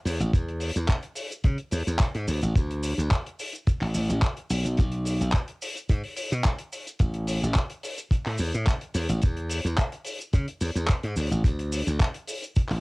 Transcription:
0.05 E2, open hi-hat, cabasa
0.20 A1, closed hi-hat, cabasa
0.33 E2, kick, closed hi-hat, cabasa
0.48 closed hi-hat
0.60 open hi-hat, cabasa
0.75 E2, closed hi-hat, cabasa
0.88 kick, clap, closed hi-hat, cabasa
1.03 closed hi-hat
1.15 open hi-hat, cabasa
1.31 closed hi-hat, cabasa
1.44 C#3, kick, closed hi-hat, cabasa
1.58 closed hi-hat
1.71 E2, open hi-hat, cabasa
1.87 E2, closed hi-hat, cabasa
1.99 kick, clap, closed hi-hat, cabasa
2.15 G#2, closed hi-hat
2.28 D2, open hi-hat, cabasa
2.42 A1, closed hi-hat, cabasa
2.55 D2, kick, closed hi-hat, cabasa
2.71 closed hi-hat
2.83 open hi-hat, cabasa
2.98 D2, closed hi-hat, cabasa
3.11 kick, clap, closed hi-hat, cabasa
3.26 closed hi-hat
3.39 open hi-hat, cabasa
3.53 closed hi-hat, cabasa
3.67 muted slap bass stroke, kick, closed hi-hat, cabasa
3.81 A1, clap, open hi-hat
3.94 A1, open hi-hat, cabasa
4.09 A1, closed hi-hat, cabasa
4.22 kick, clap, closed hi-hat, cabasa
4.37 closed hi-hat
4.50 B1, open hi-hat, cabasa
4.65 B1, closed hi-hat, cabasa
4.77 B1, kick, closed hi-hat, cabasa
4.92 closed hi-hat
5.05 open hi-hat, cabasa
5.21 B1, closed hi-hat, cabasa
5.32 kick, clap, closed hi-hat, cabasa
5.48 closed hi-hat
5.62 open hi-hat, cabasa
5.76 closed hi-hat, cabasa
5.89 G#2, kick, closed hi-hat, cabasa
6.04 open hi-hat
6.16 open hi-hat, cabasa
6.31 B2, closed hi-hat, cabasa
6.44 kick, clap, closed hi-hat, cabasa
6.59 closed hi-hat
6.73 open hi-hat, cabasa
6.87 closed hi-hat, cabasa
6.99 A1, kick, closed hi-hat, cabasa
7.14 closed hi-hat
7.27 open hi-hat, cabasa
7.42 A1, closed hi-hat, cabasa
7.54 kick, clap, closed hi-hat, cabasa
7.70 closed hi-hat
7.83 open hi-hat, cabasa
7.98 closed hi-hat, cabasa
8.11 muted slap bass stroke, kick, closed hi-hat, cabasa
8.26 A2, clap, open hi-hat
8.38 E2, open hi-hat, cabasa
8.53 A2, closed hi-hat, cabasa
8.67 kick, clap, closed hi-hat, cabasa
8.81 closed hi-hat
8.94 E2, open hi-hat, cabasa
9.09 A1, closed hi-hat, cabasa
9.22 kick, closed hi-hat, cabasa
9.37 closed hi-hat
9.49 open hi-hat, cabasa
9.65 E2, closed hi-hat, cabasa
9.78 kick, clap, closed hi-hat, cabasa
9.92 closed hi-hat
10.05 open hi-hat, cabasa
10.19 closed hi-hat, cabasa
10.33 C#3, kick, closed hi-hat, cabasa
10.48 closed hi-hat
10.61 E2, open hi-hat, cabasa
10.76 E2, closed hi-hat, cabasa
10.88 kick, clap, closed hi-hat, cabasa
11.03 G#2, closed hi-hat
11.16 D2, open hi-hat, cabasa
11.31 A1, closed hi-hat, cabasa
11.44 D2, kick, closed hi-hat, cabasa
11.59 closed hi-hat
11.72 open hi-hat, cabasa
11.87 D2, closed hi-hat, cabasa
12.00 kick, clap, closed hi-hat, cabasa
12.14 closed hi-hat
12.28 open hi-hat, cabasa
12.42 closed hi-hat, cabasa
12.56 muted slap bass stroke, kick, closed hi-hat, cabasa
12.69 A1, clap, open hi-hat

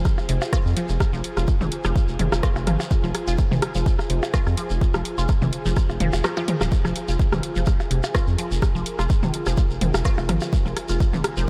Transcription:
Already playing: F4 G#4 C5 G#5
0.05 kick, cross-stick, shekere
0.18 percussion blips, shekere
0.29 F1 C3, open hi-hat
0.42 percussion blips, shekere
0.53 F4, kick, cross-stick, claves, shekere
0.66 F2, shekere
0.77 F3, open hi-hat
0.89 F1, shekere
1.00 kick, cross-stick, shekere
1.13 F1 F3, shekere
1.24 open hi-hat
1.37 F1 F4, cross-stick, shekere
1.47 kick, shekere
1.61 F1 C3, mid tom, shekere
1.72 open hi-hat
1.84 F1 F3, cross-stick, claves, shekere
1.96 kick, shekere
2.08 F1, shekere
2.19 F1 C3, open hi-hat, mid tom
2.32 F1, cross-stick, percussion blips, shekere
2.43 F4, kick, cross-stick, shekere
2.56 F1, percussion blips, shekere
2.67 G#1 F3, cross-stick, open hi-hat, mid tom
2.80 percussion blips, shekere
2.91 kick, shekere
3.04 F1 F3, shekere
3.15 cross-stick, open hi-hat, claves
3.28 F1 F4, shekere
3.38 kick, shekere
3.51 F1 C3, mid tom, shekere
3.62 cross-stick, open hi-hat
3.75 F1 F3, shekere
3.86 kick, shekere
3.99 cross-stick, percussion blips, shekere
4.10 F1 C3, open hi-hat
4.23 percussion blips, shekere
4.34 F4, kick, cross-stick, shekere
4.47 F2, cross-stick, claves, shekere
4.57 F3, open hi-hat
4.70 F1, shekere
4.81 kick, shekere
4.94 F1 F3, cross-stick, shekere
5.05 open hi-hat
5.18 F1 F4, shekere
5.29 kick, cross-stick, shekere
5.42 F1 C3, mid tom, shekere
5.53 open hi-hat
5.66 F1 F3, shekere
5.77 kick, cross-stick, claves, shekere
5.89 F1, percussion blips, shekere
6.00 F1 F3, open hi-hat, mid tom
6.13 F1, percussion blips, shekere
6.24 F3, cross-stick, shekere
6.36 F3, percussion blips, shekere
6.48 F3, open hi-hat, mid tom
6.61 D#1 F3, cross-stick, percussion blips, shekere
6.72 kick, shekere
6.85 F1 F3, cross-stick, claves, shekere
6.96 open hi-hat
7.08 F1 F4, shekere
7.19 kick, shekere
7.32 F1 C3, cross-stick, mid tom, shekere
7.43 open hi-hat
7.56 F1 F3, shekere
7.66 kick, cross-stick, shekere
7.80 percussion blips, shekere
7.91 F1 C3, open hi-hat
8.03 percussion blips, shekere
8.15 F4 A#4, kick, cross-stick, claves, shekere
8.27 F2, shekere
8.38 F3, open hi-hat
8.51 F1, shekere
8.62 kick, cross-stick, shekere
8.75 F1 F3, shekere
8.86 open hi-hat
8.99 F1 F4, cross-stick, shekere
9.10 kick, shekere
9.23 F1 C3, mid tom, shekere
9.34 open hi-hat
9.46 F1 F3, cross-stick, claves, shekere
9.57 kick, shekere
9.70 F1, shekere
9.81 F1 C3, open hi-hat, mid tom
9.94 F1, cross-stick, percussion blips, shekere
10.05 F4, kick, cross-stick, shekere
10.18 F1, percussion blips, shekere
10.29 G#1 F3, cross-stick, open hi-hat, mid tom
10.41 percussion blips, shekere
10.53 kick, shekere
10.66 F1 F3, shekere
10.77 cross-stick, open hi-hat, claves
10.89 F1 F4, shekere
11.00 kick, shekere
11.13 F1 C3, mid tom, shekere
11.24 cross-stick, open hi-hat
11.37 F1 F3, shekere

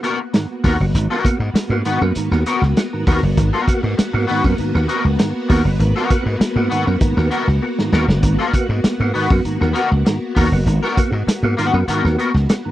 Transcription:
Already playing: A#3 B3 F#4
0.03 B3 F#4 A#4, closed hi-hat
0.20 muted clean electric guitar stroke
0.33 G#2 D#3, muted clean electric guitar stroke, snare, closed hi-hat
0.64 D#2 A#3 B3 F#4 A#4, kick, open hi-hat
0.80 F#1 B3 F#4, muted clean electric guitar stroke
0.94 G#1 G#2 D#3, muted clean electric guitar stroke, closed hi-hat
1.10 B3 F#4 A#4, snare
1.25 A#3 B3 F#4, muted slap bass stroke, muted clean electric guitar stroke, kick, closed hi-hat
1.40 G#2, muted clean electric guitar stroke
1.54 muted slap bass stroke, muted clean electric guitar stroke, snare, closed hi-hat
1.70 G#2 A#3 B3 F#4, muted clean electric guitar stroke
1.85 G#2 D#3 B3 F#4 B4, closed hi-hat
2.01 F#2 A#3 B3 F#4, muted clean electric guitar stroke
2.15 G#2 D#3, muted slap bass stroke, closed hi-hat
2.31 D#2 A#3 B3 F#4, muted clean electric guitar stroke, snare
2.46 B3 F#4 A#4, closed hi-hat
2.62 C#2, muted clean electric guitar stroke, snare
2.77 B3 F#4, muted clean electric guitar stroke, snare, closed hi-hat
2.93 G#2 D#3
3.07 D#2 A#3 B3 F#4 A#4, kick, open hi-hat
3.23 F#1, muted clean electric guitar stroke
3.37 G#1 G#2 D#3, muted clean electric guitar stroke, kick, closed hi-hat
3.53 B3 F#4 A#4, snare
3.67 A#3 B3 F#4, muted clean electric guitar stroke, muted slap bass stroke, kick, closed hi-hat
3.83 G#2, muted clean electric guitar stroke
3.97 muted clean electric guitar stroke, muted slap bass stroke, snare, closed hi-hat
4.13 G#2 A#3 B3 F#4, muted clean electric guitar stroke
4.27 G#2 D#3 B3 F#4 B4, open hi-hat
4.43 F#2 A#3 B3 F#4, muted clean electric guitar stroke, kick
4.58 G#2 D#3, muted slap bass stroke, closed hi-hat
4.75 D#2 A#3 B3 F#4, muted clean electric guitar stroke, snare
4.88 B3 F#4 A#4, closed hi-hat
5.05 C#2, muted clean electric guitar stroke
5.19 G#2 D#3, muted clean electric guitar stroke, snare, closed hi-hat
5.48 D#2 A#3 B3 F#4 A#4, kick, open hi-hat
5.65 F#1 B3 F#4, muted clean electric guitar stroke
5.79 G#1 G#2 D#3, muted clean electric guitar stroke, closed hi-hat
5.96 B3 F#4 A#4, snare
6.10 A#3 B3 F#4, muted slap bass stroke, kick, closed hi-hat
6.26 G#2, muted clean electric guitar stroke
6.39 muted clean electric guitar stroke, muted slap bass stroke, snare, closed hi-hat
6.56 G#2 A#3 B3 F#4, muted clean electric guitar stroke
6.70 G#2 D#3 B3 F#4 B4, closed hi-hat
6.86 F#2 A#3 B3 F#4, muted clean electric guitar stroke
7.01 G#2 D#3, muted slap bass stroke, kick, closed hi-hat
7.17 D#2 A#3 B3 F#4, muted clean electric guitar stroke, snare
7.31 B3 F#4 A#4, closed hi-hat
7.48 C#2, muted clean electric guitar stroke, snare
7.62 B3 F#4, muted clean electric guitar stroke
7.79 G#2 D#3, snare
7.92 D#2 A#3 B3 F#4 A#4, snare
8.08 F#1, muted clean electric guitar stroke, snare
8.23 G#1 G#2 D#3, muted clean electric guitar stroke, kick, closed hi-hat
8.39 B3 F#4 A#4, snare
8.53 A#3 B3 F#4, muted clean electric guitar stroke, muted slap bass stroke, kick, closed hi-hat
8.69 G#2, muted clean electric guitar stroke
8.84 muted clean electric guitar stroke, muted slap bass stroke, snare, closed hi-hat
9.00 G#2 A#3 B3 F#4, muted clean electric guitar stroke
9.14 G#2 D#3 B3 F#4 B4, open hi-hat
9.29 F#2 A#3 B3 F#4, muted clean electric guitar stroke, kick
9.45 G#2 D#3, muted slap bass stroke, closed hi-hat
9.61 D#2 A#3 B3 F#4, muted clean electric guitar stroke, snare
9.73 B3 F#4 A#4, closed hi-hat
9.91 C#2, muted clean electric guitar stroke
10.05 G#2 D#3, muted clean electric guitar stroke, snare, closed hi-hat
10.35 D#2 A#3 B3 F#4 A#4, kick, open hi-hat
10.52 F#1 B3 F#4, muted clean electric guitar stroke
10.66 G#1 G#2 D#3, muted clean electric guitar stroke, closed hi-hat
10.83 B3 F#4 A#4, snare
10.97 A#3 B3 F#4, muted clean electric guitar stroke, muted slap bass stroke, kick, closed hi-hat
11.12 G#2, muted clean electric guitar stroke
11.27 muted slap bass stroke, muted clean electric guitar stroke, snare, closed hi-hat
11.43 G#2 A#3 B3 F#4, muted clean electric guitar stroke
11.57 G#2 D#3 B3 F#4 B4, closed hi-hat
11.73 F#2 A#3 B3 F#4, muted clean electric guitar stroke
11.88 G#2 D#3 B3 F#4 A#4, muted slap bass stroke, closed hi-hat
12.04 D#2 A#3 B3 F#4, muted clean electric guitar stroke, snare
12.18 B3 F#4 A#4, closed hi-hat
12.34 C#2, muted clean electric guitar stroke, snare
12.49 B3 F#4, muted clean electric guitar stroke, snare, closed hi-hat
12.65 G#2 D#3

